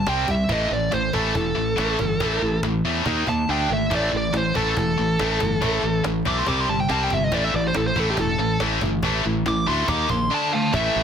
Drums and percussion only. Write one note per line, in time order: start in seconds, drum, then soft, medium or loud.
0.07 cajon slap loud
0.28 cajon bass medium
0.49 cajon bass loud
0.92 cajon slap loud
1.13 cajon bass medium
1.35 cajon bass loud
1.78 cajon slap loud
1.99 cajon bass medium
2.20 cajon bass loud
2.63 cajon slap loud
3.06 cajon bass loud
3.27 cajon bass medium
3.91 cajon bass loud
4.23 cajon slap soft
4.34 cajon slap loud
4.55 cajon bass medium
4.77 cajon bass loud
5.19 cajon slap loud
5.40 cajon bass medium
5.62 cajon bass loud
6.04 cajon slap loud
6.25 cajon bass medium
6.46 cajon bass loud
6.89 cajon slap loud
7.10 cajon bass medium
7.32 cajon bass loud
7.75 cajon slap loud
7.96 cajon bass medium
8.17 cajon bass loud
8.60 cajon slap loud
8.81 cajon bass medium
9.03 cajon bass loud
9.35 cajon slap soft
9.46 cajon slap loud
9.88 cajon bass loud
10.09 cajon bass medium
10.74 cajon bass loud